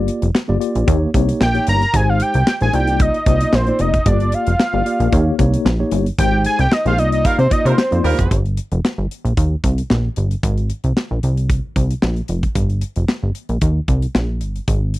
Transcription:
Already playing: tine electric piano A#3 F4 G4 D5
0.08 closed hi-hat
0.22 analog synth bass F1, closed hi-hat
0.35 snare, clap
0.48 analog synth bass G1, tine electric piano A#3 F4 G4 D5
0.60 tine electric piano A#3 F4 G4 D5, closed hi-hat
0.75 analog synth bass A#1, closed hi-hat
0.87 analog synth bass D#2, tine electric piano A#3 D#4 G4 C#5, kick, closed hi-hat
1.14 analog synth bass C2, tine electric piano A#3 D#4 G4 C#5, kick, closed hi-hat
1.29 closed hi-hat
1.41 analog synth bass A#1, analog synth lead G5, snare, clap
1.54 tine electric piano A#3 D#4 G4 C#5, closed hi-hat
1.67 analog synth bass G1, analog synth lead A#5, closed hi-hat
1.82 closed hi-hat
1.93 analog synth bass G#1, tine electric piano G#3 D#4 G4 C5, analog synth lead G#5, kick, closed hi-hat
2.09 analog synth lead F5
2.20 analog synth lead G5, closed hi-hat
2.34 analog synth bass C2, closed hi-hat
2.47 analog synth lead G5, snare, clap
2.61 analog synth bass A#1, tine electric piano G#3 D#4 G4 C5, analog synth lead G#5, closed hi-hat
2.73 analog synth bass C2, tine electric piano A#3 D#4 F4 D5, analog synth lead G5, closed hi-hat
2.87 closed hi-hat
3.00 analog synth lead D#5, kick, closed hi-hat
3.14 closed hi-hat
3.26 analog synth bass C2, tine electric piano A#3 D#4 F4 D5, analog synth lead D#5, kick, closed hi-hat
3.41 closed hi-hat
3.53 analog synth bass A#1, analog synth lead C5, snare, clap
3.67 tine electric piano A#3 D#4 F4 D5, closed hi-hat
3.79 analog synth bass F1, analog synth lead D#5, closed hi-hat
3.94 kick, closed hi-hat
4.06 analog synth bass G1, tine electric piano A#3 F4 G4 D5, analog synth lead D5, kick, closed hi-hat
4.20 closed hi-hat
4.32 analog synth lead F5, closed hi-hat
4.47 analog synth bass F1, closed hi-hat
4.60 snare, clap
4.73 analog synth bass G1, tine electric piano A#3 F4 G4 D5
4.86 tine electric piano A#3 F4 G4 D5, closed hi-hat
5.00 analog synth bass A#1, closed hi-hat
5.12 analog synth bass D#2, tine electric piano A#3 D#4 G4 C#5, kick, closed hi-hat
5.38 analog synth bass C2, tine electric piano A#3 D#4 G4 C#5, kick, closed hi-hat
5.54 closed hi-hat
5.65 analog synth bass A#1, snare, clap
5.79 tine electric piano A#3 D#4 G4 C#5
5.92 analog synth bass G1, closed hi-hat
6.06 closed hi-hat
6.18 analog synth bass G#1, tine electric piano G#3 D#4 G4 C5, analog synth lead G5, kick, closed hi-hat
6.45 analog synth lead G#5, closed hi-hat
6.59 analog synth bass C2, analog synth lead G5, closed hi-hat
6.72 analog synth lead D#5, snare, clap
6.85 analog synth bass A#1, tine electric piano G#3 D#4 G4 C5, horn section G#3 C4 G4 C5, analog synth lead F5, closed hi-hat
6.98 analog synth bass C2, tine electric piano A#3 D#4 F4 D5, analog synth lead D#5, closed hi-hat
7.12 analog synth lead D#5, closed hi-hat
7.25 horn section G3 A#3 F4 A#4, analog synth lead F5, kick, closed hi-hat
7.39 analog synth bass C3, analog synth lead C5, closed hi-hat
7.50 tine electric piano A#3 D#4 F4 D5, analog synth lead D#5, kick, closed hi-hat
7.65 analog synth bass C3, horn section G3 A#3 F4 A#4, analog synth lead C5, closed hi-hat
7.78 snare, clap
7.91 analog synth bass F2, tine electric piano A#3 D#4 F4 D5, closed hi-hat
8.04 analog synth bass D#2, horn section G3 A#3 F4 A#4, open hi-hat
8.19 analog synth bass F1, kick, closed hi-hat
8.31 analog synth bass G1, kick, closed hi-hat
8.46 closed hi-hat
8.57 closed hi-hat
8.72 analog synth bass F1, closed hi-hat
8.85 snare, clap
8.98 analog synth bass G1
9.11 closed hi-hat
9.25 analog synth bass A#1, closed hi-hat
9.37 analog synth bass D#2, kick, closed hi-hat
9.64 analog synth bass C2, kick, closed hi-hat
9.78 closed hi-hat
9.90 analog synth bass A#1, snare, clap
10.16 analog synth bass G1, closed hi-hat
10.31 closed hi-hat
10.43 analog synth bass G#1, kick, closed hi-hat
10.58 closed hi-hat
10.70 closed hi-hat
10.84 analog synth bass C2, closed hi-hat
10.97 snare, clap
11.11 analog synth bass A#1
11.23 analog synth bass C2, closed hi-hat
11.37 closed hi-hat
11.50 kick, closed hi-hat
11.76 analog synth bass C2, kick, closed hi-hat
11.91 closed hi-hat
12.02 analog synth bass A#1, snare, clap
12.16 closed hi-hat
12.28 analog synth bass F1, closed hi-hat
12.43 kick, closed hi-hat
12.55 analog synth bass G1, kick, closed hi-hat
12.70 closed hi-hat
12.81 closed hi-hat
12.96 analog synth bass F1, closed hi-hat
13.09 snare, clap
13.23 analog synth bass G1
13.35 closed hi-hat
13.49 analog synth bass A#1, closed hi-hat
13.61 analog synth bass D#2, kick, closed hi-hat
13.88 analog synth bass C2, kick, closed hi-hat
14.02 closed hi-hat
14.15 analog synth bass A#1, snare, clap
14.41 analog synth bass G1, closed hi-hat
14.56 closed hi-hat
14.68 analog synth bass G#1, kick, closed hi-hat
14.94 closed hi-hat

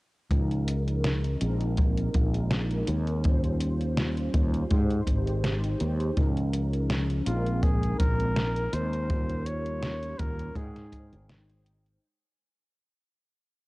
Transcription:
0.30 fretless electric bass C#2, analog polysynth F3 C#4 D#4 A#4, kick, closed hi-hat
0.51 closed hi-hat
0.68 closed hi-hat
0.88 closed hi-hat
1.04 snare, closed hi-hat
1.24 closed hi-hat
1.40 fretless electric bass A#1, analog polysynth G#3 C4 D#4 A#4, closed hi-hat
1.61 closed hi-hat
1.77 kick, closed hi-hat
1.97 closed hi-hat
2.14 fretless electric bass A#1, kick, closed hi-hat
2.34 closed hi-hat
2.51 snare, closed hi-hat
2.71 closed hi-hat
2.87 fretless electric bass D#2, closed hi-hat
3.07 closed hi-hat
3.23 analog polysynth G3 C#4 F4 C5, kick, closed hi-hat
3.44 closed hi-hat
3.60 closed hi-hat
3.81 closed hi-hat
3.97 snare, closed hi-hat
4.17 closed hi-hat
4.34 fretless electric bass D#2, kick, closed hi-hat
4.54 closed hi-hat
4.69 fretless electric bass G#2, analog polysynth G#3 D#4 G4 C5, kick, closed hi-hat
4.90 closed hi-hat
5.07 fretless electric bass G#1, kick, closed hi-hat
5.27 closed hi-hat
5.44 snare, closed hi-hat
5.64 closed hi-hat
5.80 fretless electric bass D#2, closed hi-hat
6.00 closed hi-hat
6.16 fretless electric bass C#2, analog polysynth F3 C#4 D#4 A#4, kick, closed hi-hat
6.37 closed hi-hat
6.53 closed hi-hat
6.73 closed hi-hat
6.90 snare, closed hi-hat
7.10 closed hi-hat
7.25 fretless electric bass A#1, analog polysynth G#3 C4 D#4 A#4, flugelhorn F4, closed hi-hat
7.46 closed hi-hat
7.63 flugelhorn G#4, kick, closed hi-hat
7.83 closed hi-hat
7.99 fretless electric bass A#1, flugelhorn A#4, kick, closed hi-hat
8.20 closed hi-hat
8.36 snare, closed hi-hat
8.56 closed hi-hat
8.73 fretless electric bass D#2, flugelhorn C5, closed hi-hat
8.93 closed hi-hat
9.08 analog polysynth G3 C#4 F4 A#4, kick, closed hi-hat
9.30 closed hi-hat
9.46 flugelhorn C#5, closed hi-hat
9.66 closed hi-hat
9.83 snare, closed hi-hat
10.03 closed hi-hat
10.19 fretless electric bass D#2, flugelhorn A#4, kick, closed hi-hat
10.39 closed hi-hat
10.54 fretless electric bass G#2, analog polysynth G#3 D#4 C5 G5, flugelhorn G#4, kick, closed hi-hat
10.76 snare, closed hi-hat
10.92 kick, closed hi-hat
11.13 fretless electric bass G#1, closed hi-hat
11.29 snare, closed hi-hat
11.50 closed hi-hat
11.66 closed hi-hat
11.86 closed hi-hat

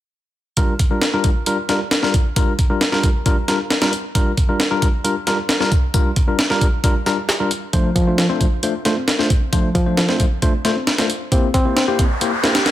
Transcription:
0.57 tine electric piano G3 D4 F4 A#4, kick, closed hi-hat
0.79 kick, closed hi-hat
0.91 tine electric piano G3 D4 F4 A#4
1.02 snare, closed hi-hat
1.13 tine electric piano G3 D4 F4 A#4
1.24 kick, closed hi-hat
1.46 tine electric piano G3 D4 F4 A#4, closed hi-hat
1.69 tine electric piano G3 D4 F4 A#4, snare, closed hi-hat
1.91 snare, closed hi-hat
2.03 tine electric piano G3 D4 F4 A#4, snare
2.14 kick, closed hi-hat
2.36 tine electric piano G3 D4 F4 A#4, kick, closed hi-hat
2.59 kick, closed hi-hat
2.70 tine electric piano G3 D4 F4 A#4
2.81 snare, closed hi-hat
2.92 tine electric piano G3 D4 F4 A#4, snare
3.03 kick, closed hi-hat
3.26 tine electric piano G3 D4 F4 A#4, kick, closed hi-hat
3.48 tine electric piano G3 D4 F4 A#4, snare, closed hi-hat
3.70 snare, closed hi-hat
3.82 tine electric piano G3 D4 F4 A#4, snare, closed hi-hat
3.93 closed hi-hat
4.15 tine electric piano G3 D4 F4 A#4, kick, closed hi-hat
4.37 kick, closed hi-hat
4.49 tine electric piano G3 D4 F4 A#4
4.60 snare, closed hi-hat
4.71 tine electric piano G3 D4 F4 A#4
4.82 kick, closed hi-hat
5.04 tine electric piano G3 D4 F4 A#4, closed hi-hat
5.27 tine electric piano G3 D4 F4 A#4, snare, closed hi-hat
5.49 snare, closed hi-hat
5.60 tine electric piano G3 D4 F4 A#4, snare
5.72 kick, closed hi-hat
5.94 tine electric piano G3 D4 F4 A#4, kick, closed hi-hat
6.16 kick, closed hi-hat
6.28 tine electric piano G3 D4 F4 A#4
6.39 snare, closed hi-hat
6.50 tine electric piano G3 D4 F4 A#4, snare
6.61 kick, closed hi-hat
6.84 tine electric piano G3 D4 F4 A#4, kick, closed hi-hat
7.06 tine electric piano G3 D4 F4 A#4, snare, closed hi-hat
7.29 snare, closed hi-hat
7.40 tine electric piano G3 D4 F4 A#4
7.51 closed hi-hat
7.73 reed electric piano F3, tine electric piano A3 D4 F4 C5, kick, closed hi-hat
7.96 reed electric piano F3, kick, closed hi-hat
8.07 tine electric piano A3 D4 F4 C5
8.18 reed electric piano F3, snare, closed hi-hat
8.29 tine electric piano A3 D4 F4 C5, reed electric piano C4
8.41 reed electric piano F3, kick, closed hi-hat
8.63 tine electric piano A3 D4 F4 C5, closed hi-hat
8.85 tine electric piano A3 D4 F4 C5, reed electric piano A3, snare, closed hi-hat
8.97 reed electric piano C4
9.08 snare, closed hi-hat
9.19 tine electric piano A3 D4 F4 C5, snare
9.30 kick, closed hi-hat
9.53 reed electric piano F3, tine electric piano A3 D4 F4 C5, kick, closed hi-hat
9.75 reed electric piano F3, kick, closed hi-hat
9.86 tine electric piano A3 D4 F4 C5
9.97 reed electric piano F3, snare, closed hi-hat
10.09 tine electric piano A3 D4 F4 C5, reed electric piano C4, snare
10.20 reed electric piano F3, kick, closed hi-hat
10.42 tine electric piano A3 D4 F4 C5, kick, closed hi-hat
10.65 reed electric piano A3, tine electric piano A3 D4 F4 C5, snare, closed hi-hat
10.76 reed electric piano C4
10.87 snare, closed hi-hat
10.98 tine electric piano A3 D4 F4 C5, snare, closed hi-hat
11.10 closed hi-hat
11.32 tine electric piano A#3 E4 G4 C5, reed electric piano C4, kick, closed hi-hat, riser
11.54 reed electric piano C4, kick, closed hi-hat
11.65 tine electric piano A#3 E4 G4 C5
11.76 reed electric piano C4, snare, closed hi-hat
11.88 tine electric piano A#3 E4 G4 C5, reed electric piano G4
11.99 reed electric piano C4, kick, closed hi-hat
12.21 tine electric piano A#3 E4 G4 C5, closed hi-hat
12.43 tine electric piano A#3 E4 G4 C5, reed electric piano E4, snare, closed hi-hat
12.55 reed electric piano G4, snare, closed hi-hat
12.66 snare, closed hi-hat

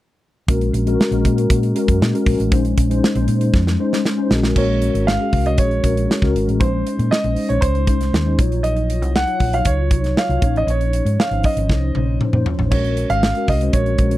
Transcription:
0.48 fingered electric bass A#1, tine electric piano G#3 C#4 F#4 A#4, kick, closed hi-hat
0.61 closed hi-hat
0.73 fingered electric bass A#1, closed hi-hat
0.87 tine electric piano G#3 C#4 F#4 A#4, closed hi-hat
1.01 snare
1.11 fingered electric bass A#1, tine electric piano G#3 C#4 F#4 A#4, closed hi-hat
1.25 fingered electric bass A#2, kick, closed hi-hat
1.38 closed hi-hat
1.50 fingered electric bass A#2, kick, closed hi-hat
1.63 closed hi-hat
1.75 tine electric piano G#3 C#4 F#4 A#4, closed hi-hat
1.88 fingered electric bass F#2, kick, closed hi-hat
2.01 fingered electric bass A#2, snare
2.13 tine electric piano G#3 C#4 F#4 A#4, closed hi-hat
2.26 fingered electric bass A#1, kick, open hi-hat
2.40 fingered electric bass A1, closed hi-hat
2.51 fingered electric bass A#1, tine electric piano G#3 C#4 D#4 C5, kick, closed hi-hat
2.65 closed hi-hat
2.78 fingered electric bass A#1, kick, closed hi-hat
2.90 tine electric piano G#3 C#4 D#4 C5, closed hi-hat
3.04 snare
3.15 fingered electric bass A#1, tine electric piano G#3 C#4 D#4 C5, closed hi-hat
3.28 fingered electric bass A#2, closed hi-hat
3.41 closed hi-hat
3.54 fingered electric bass F2, kick, snare
3.67 snare
3.80 tine electric piano G#3 C#4 D#4 C5
3.93 snare
4.05 snare
4.17 tine electric piano G#3 C#4 D#4 C5
4.30 fingered electric bass A#1, tine electric piano G#3 C#4 F#4 A#4, snare
4.43 snare
4.56 fingered electric bass A#1, tine electric piano G#3 C#4 F#4 A#4, grand piano C#5, kick, crash
4.82 closed hi-hat
4.94 fingered electric bass G#1, closed hi-hat
5.07 grand piano F5, snare
5.20 tine electric piano G#3 C#4 F#4 G#4
5.33 fingered electric bass C2, kick, open hi-hat
5.45 tine electric piano G#3 C#4 F#4 C#5, grand piano D#5, closed hi-hat
5.58 fingered electric bass A#1, grand piano C#5, kick, closed hi-hat
5.71 closed hi-hat
5.84 fingered electric bass A#1, tine electric piano G#3 C#4 F#4 A#4, kick, closed hi-hat
5.97 closed hi-hat
6.11 snare
6.22 fingered electric bass C#2, tine electric piano G#3 C#4 F#4 A#4, kick, snare
6.35 fingered electric bass G#1, closed hi-hat
6.48 fingered electric bass A1, closed hi-hat
6.60 fingered electric bass A#1, tine electric piano G#3 C#4 D#4, grand piano C5, kick, closed hi-hat
6.67 tine electric piano C5
6.87 closed hi-hat
6.99 fingered electric bass A#2, closed hi-hat
7.11 grand piano D#5, snare
7.24 fingered electric bass A#1, tine electric piano G#3 C#4 D#4 C5, closed hi-hat
7.36 open hi-hat
7.49 fingered electric bass A#1, tine electric piano G#3 C#4 D#4 C5, grand piano C#5, closed hi-hat
7.61 fingered electric bass C#2, grand piano C5, kick, closed hi-hat
7.75 closed hi-hat
7.87 fingered electric bass C2, tine electric piano G#3 C#4 D#4 C5, kick, closed hi-hat
8.01 snare, closed hi-hat
8.13 fingered electric bass D#2, snare
8.26 tine electric piano G#3 C#4 D#4 C5
8.38 fingered electric bass A#1, tine electric piano F#3 D#4 F4 C#5, kick, closed hi-hat
8.52 closed hi-hat
8.63 grand piano D#5, closed hi-hat
8.77 closed hi-hat
8.90 closed hi-hat
9.02 fingered electric bass C2, closed hi-hat
9.16 grand piano F#5, snare
9.27 tine electric piano F#3 D#4 F4 C#5, closed hi-hat
9.40 fingered electric bass A#1, kick, open hi-hat
9.52 tine electric piano F#3 D#4 F4 C#5, grand piano F5, closed hi-hat
9.65 fingered electric bass C#2, grand piano C#5, kick, closed hi-hat
9.91 fingered electric bass C2, tine electric piano F#3 D#4 F4 C#5, kick, closed hi-hat
10.04 snare, closed hi-hat
10.17 grand piano F5, snare
10.29 fingered electric bass C2, tine electric piano F#3 D#4 F4 C#5, closed hi-hat
10.41 fingered electric bass A#1, tine electric piano F3 C#4 D#4 C#5, kick, closed hi-hat
10.54 fingered electric bass A1, grand piano D#5, closed hi-hat
10.67 fingered electric bass A#1, grand piano C#5, closed hi-hat
10.81 closed hi-hat
10.93 closed hi-hat
11.05 fingered electric bass G#2, closed hi-hat
11.20 grand piano F5, snare
11.31 fingered electric bass G#1, tine electric piano F3 C#4 D#4 C5, closed hi-hat
11.43 grand piano D#5, kick, open hi-hat
11.56 fingered electric bass G#1, tine electric piano F3 C#4 D#4 C5, closed hi-hat
11.69 fingered electric bass C2, kick, snare
11.95 fingered electric bass A#1, tine electric piano F3 C#4 D#4 C5, high tom
12.21 mid tom
12.33 fingered electric bass A#2, tine electric piano F3 C#4 D#4 C5, mid tom
12.46 floor tom
12.59 fingered electric bass A1, floor tom
12.71 fingered electric bass A#1, tine electric piano G#3 C#4 F#4 A#4, grand piano C#5, kick, crash
12.84 closed hi-hat
12.97 closed hi-hat
13.10 fingered electric bass G#1, grand piano F5, closed hi-hat
13.23 snare
13.35 tine electric piano G#3 C#4 F#4 A#4, closed hi-hat
13.48 fingered electric bass C2, grand piano D#5, kick, open hi-hat
13.61 tine electric piano G#3 C#4 F#4 C5, closed hi-hat
13.73 fingered electric bass A#1, grand piano C#5, kick, closed hi-hat
13.86 closed hi-hat
13.98 fingered electric bass A#1, tine electric piano G#3 C#4 F#4 A#4, kick, closed hi-hat
14.11 closed hi-hat

